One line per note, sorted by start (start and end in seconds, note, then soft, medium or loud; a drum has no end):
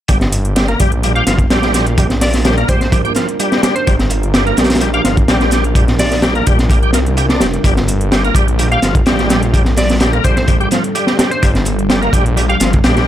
0.08 0.75 G1 loud
0.08 13.07 G3 medium
0.08 0.18 G3 medium
0.08 13.07 D4 medium
0.08 13.07 F4 medium
0.08 7.63 A#4 medium
0.08 kick loud
0.08 closed hi-hat medium
0.08 closed hi-hat soft
0.21 snare soft
0.21 closed hi-hat soft
0.32 closed hi-hat medium
0.45 closed hi-hat soft
0.56 0.67 G3 medium
0.56 snare loud
0.56 closed hi-hat medium
0.56 closed hi-hat soft
0.68 0.79 A#3 loud
0.68 closed hi-hat soft
0.80 1.23 A#1 medium
0.80 0.92 G3 loud
0.80 kick medium
0.80 closed hi-hat medium
0.92 closed hi-hat soft
1.03 1.12 G3 medium
1.03 closed hi-hat soft
1.03 closed hi-hat medium
1.15 1.24 G4 medium
1.15 1.27 F5 medium
1.15 closed hi-hat soft
1.27 1.45 G1 medium
1.27 1.39 F3 medium
1.27 snare medium
1.27 closed hi-hat medium
1.39 kick medium
1.39 closed hi-hat soft
1.50 2.64 A#1 medium
1.50 1.73 G3 loud
1.50 snare loud
1.50 closed hi-hat soft
1.50 closed hi-hat medium
1.63 snare medium
1.63 closed hi-hat soft
1.74 1.86 G3 loud
1.74 snare soft
1.74 closed hi-hat medium
1.87 closed hi-hat soft
1.98 2.07 G3 medium
1.98 kick loud
1.98 closed hi-hat medium
1.98 closed hi-hat soft
2.10 snare soft
2.10 closed hi-hat soft
2.21 2.33 D5 medium
2.21 snare medium
2.21 closed hi-hat medium
2.21 open hi-hat medium
2.34 snare soft
2.34 closed hi-hat soft
2.45 2.56 G3 loud
2.45 snare loud
2.45 closed hi-hat medium
2.45 closed hi-hat soft
2.58 2.68 A#3 loud
2.58 closed hi-hat soft
2.68 3.11 A#1 medium
2.68 2.80 G3 loud
2.68 2.77 C5 medium
2.68 kick medium
2.68 closed hi-hat medium
2.81 2.88 C5 medium
2.81 snare soft
2.81 closed hi-hat soft
2.92 3.01 G3 medium
2.92 kick loud
2.92 closed hi-hat medium
2.92 closed hi-hat soft
3.05 3.13 G4 medium
3.05 closed hi-hat soft
3.15 3.28 F3 medium
3.15 snare soft
3.15 closed hi-hat medium
3.16 closed hi-hat medium
3.29 closed hi-hat soft
3.39 3.62 G3 medium
3.39 closed hi-hat medium
3.39 closed hi-hat soft
3.52 snare medium
3.52 closed hi-hat soft
3.63 3.75 G3 loud
3.63 snare loud
3.63 closed hi-hat medium
3.75 4.41 C5 medium
3.75 closed hi-hat soft
3.87 4.53 G1 loud
3.87 3.96 G3 medium
3.87 kick loud
3.87 closed hi-hat soft
3.87 closed hi-hat medium
3.99 snare medium
3.99 closed hi-hat soft
4.10 closed hi-hat medium
4.23 closed hi-hat soft
4.34 4.45 G3 loud
4.34 snare loud
4.34 closed hi-hat medium
4.34 closed hi-hat soft
4.47 4.57 A#3 loud
4.47 closed hi-hat soft
4.57 5.00 A#1 medium
4.57 4.70 G3 loud
4.57 snare medium
4.57 closed hi-hat medium
4.64 snare medium
4.64 closed hi-hat medium
4.70 snare medium
4.70 closed hi-hat soft
4.70 closed hi-hat medium
4.75 snare medium
4.75 closed hi-hat medium
4.80 4.90 G3 medium
4.80 closed hi-hat medium
4.80 closed hi-hat soft
4.94 5.02 G4 medium
4.94 5.05 F5 medium
4.94 closed hi-hat soft
5.04 5.23 G1 medium
5.04 5.17 F3 medium
5.04 snare medium
5.04 closed hi-hat medium
5.17 kick medium
5.17 closed hi-hat soft
5.28 6.42 A#1 medium
5.28 5.51 G3 medium
5.28 snare loud
5.28 closed hi-hat soft
5.28 closed hi-hat medium
5.40 snare medium
5.40 closed hi-hat soft
5.51 5.64 G3 loud
5.51 snare soft
5.51 closed hi-hat medium
5.64 closed hi-hat soft
5.75 5.85 G3 medium
5.75 kick loud
5.75 closed hi-hat medium
5.75 closed hi-hat soft
5.88 snare soft
5.88 closed hi-hat soft
5.99 6.11 D5 medium
5.99 snare medium
5.99 closed hi-hat medium
5.99 open hi-hat medium
6.11 snare soft
6.11 closed hi-hat soft
6.22 6.34 G3 loud
6.22 snare loud
6.22 closed hi-hat medium
6.22 closed hi-hat soft
6.35 6.46 A#3 loud
6.35 closed hi-hat soft
6.46 6.95 A#1 medium
6.46 6.58 G3 loud
6.46 kick medium
6.46 closed hi-hat medium
6.59 snare soft
6.59 closed hi-hat soft
6.70 6.79 G3 medium
6.70 kick loud
6.70 closed hi-hat medium
6.70 closed hi-hat soft
6.83 6.91 G4 medium
6.83 closed hi-hat soft
6.93 7.43 C2 loud
6.93 6.99 A#3 medium
6.93 snare medium
6.93 closed hi-hat medium
7.06 closed hi-hat soft
7.17 7.26 G4 medium
7.17 closed hi-hat medium
7.17 closed hi-hat soft
7.29 7.41 D4 medium
7.29 snare medium
7.29 closed hi-hat soft
7.41 7.59 F1 medium
7.41 7.47 G3 medium
7.41 snare loud
7.41 closed hi-hat medium
7.54 closed hi-hat soft
7.64 8.31 G1 loud
7.64 7.74 G3 medium
7.64 13.07 A4 medium
7.64 kick loud
7.64 closed hi-hat medium
7.64 closed hi-hat soft
7.77 snare soft
7.77 closed hi-hat soft
7.88 closed hi-hat medium
8.01 closed hi-hat soft
8.12 8.23 G3 loud
8.12 snare loud
8.12 closed hi-hat medium
8.12 closed hi-hat soft
8.25 8.35 A#3 loud
8.25 closed hi-hat soft
8.35 8.78 A#1 medium
8.35 8.47 G3 loud
8.35 kick medium
8.35 closed hi-hat medium
8.48 closed hi-hat soft
8.59 8.68 G3 medium
8.59 closed hi-hat medium
8.59 closed hi-hat soft
8.72 8.80 G4 medium
8.72 8.83 F5 medium
8.72 closed hi-hat soft
8.82 9.01 G1 medium
8.82 8.95 F3 medium
8.82 snare medium
8.82 closed hi-hat medium
8.95 kick loud
8.95 closed hi-hat soft
9.06 10.20 A#1 medium
9.06 9.29 G3 medium
9.06 snare loud
9.06 closed hi-hat medium
9.06 closed hi-hat soft
9.19 snare medium
9.19 closed hi-hat soft
9.30 9.42 G3 loud
9.30 snare medium
9.30 closed hi-hat medium
9.43 closed hi-hat soft
9.54 9.63 G3 medium
9.54 kick loud
9.54 closed hi-hat medium
9.54 closed hi-hat soft
9.65 snare soft
9.65 closed hi-hat soft
9.76 9.89 D5 medium
9.76 snare medium
9.76 closed hi-hat medium
9.76 open hi-hat medium
9.90 snare soft
9.90 closed hi-hat soft
10.00 10.12 G3 loud
10.00 snare loud
10.00 closed hi-hat medium
10.00 closed hi-hat soft
10.13 10.24 A#3 loud
10.13 closed hi-hat soft
10.24 10.67 A#1 medium
10.24 10.36 G3 medium
10.24 10.32 C5 medium
10.24 kick medium
10.24 closed hi-hat medium
10.37 10.44 C5 medium
10.37 snare soft
10.37 closed hi-hat soft
10.48 10.57 G3 medium
10.48 kick loud
10.48 closed hi-hat medium
10.48 closed hi-hat soft
10.61 10.69 G4 medium
10.61 closed hi-hat soft
10.71 10.83 F3 medium
10.71 snare soft
10.71 closed hi-hat medium
10.84 closed hi-hat soft
10.95 11.18 G3 loud
10.95 closed hi-hat medium
10.95 closed hi-hat soft
11.07 snare soft
11.07 closed hi-hat soft
11.19 11.31 G3 loud
11.19 snare loud
11.19 closed hi-hat medium
11.31 11.97 C5 medium
11.31 closed hi-hat soft
11.42 12.09 G1 loud
11.42 11.51 G3 medium
11.42 kick loud
11.42 closed hi-hat soft
11.42 closed hi-hat medium
11.55 snare soft
11.55 closed hi-hat soft
11.65 closed hi-hat medium
11.79 closed hi-hat soft
11.89 12.01 G3 loud
11.89 snare loud
11.89 closed hi-hat soft
11.89 closed hi-hat medium
12.02 12.13 A#3 loud
12.02 closed hi-hat soft
12.13 12.56 A#1 medium
12.13 12.25 G3 loud
12.13 kick medium
12.13 closed hi-hat medium
12.26 closed hi-hat soft
12.37 12.46 G3 medium
12.37 closed hi-hat soft
12.37 closed hi-hat medium
12.49 12.57 G4 medium
12.49 12.61 F5 medium
12.49 closed hi-hat soft
12.60 12.79 G1 medium
12.60 12.72 F3 medium
12.60 snare medium
12.60 closed hi-hat medium
12.73 kick loud
12.73 closed hi-hat soft
12.84 13.07 A#1 medium
12.84 13.07 G3 loud
12.84 snare loud
12.84 closed hi-hat medium
12.84 closed hi-hat soft
12.97 snare medium
12.97 closed hi-hat soft